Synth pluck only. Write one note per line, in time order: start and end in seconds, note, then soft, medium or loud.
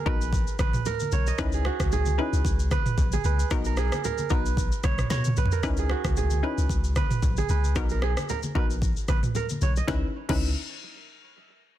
0.06 0.23 B3 medium
0.06 0.23 D#4 medium
0.06 0.23 F#4 medium
0.06 0.23 A#4 medium
1.38 1.88 C#4 loud
1.38 1.88 D#4 medium
1.38 1.88 E4 medium
1.38 1.88 B4 loud
2.18 2.36 C#4 medium
2.18 2.36 D#4 medium
2.18 2.36 E4 medium
2.18 2.36 B4 medium
3.51 4.00 B3 loud
3.51 4.00 D#4 loud
3.51 4.00 F#4 medium
3.51 4.01 A#4 loud
4.30 4.48 B3 medium
4.30 4.48 D#4 medium
4.30 4.48 F#4 medium
4.30 4.48 A#4 medium
5.63 6.13 C#4 medium
5.63 6.13 D#4 medium
5.63 6.13 E4 medium
5.63 6.13 B4 loud
6.43 6.60 C#4 medium
6.43 6.60 D#4 medium
6.43 6.61 E4 medium
6.43 6.61 B4 medium
7.76 8.25 B3 loud
7.76 8.25 D#4 medium
7.76 8.25 F#4 medium
7.76 8.25 A#4 loud
8.55 8.73 B3 medium
8.55 8.73 D#4 medium
8.55 8.73 F#4 medium
8.55 8.73 A#4 medium
9.88 10.04 C#4 medium
9.88 10.04 D#4 medium
9.88 10.04 E4 medium
9.88 10.04 B4 loud
10.29 10.48 C#4 medium
10.29 10.48 D#4 medium
10.29 10.49 E4 medium
10.29 10.49 B4 loud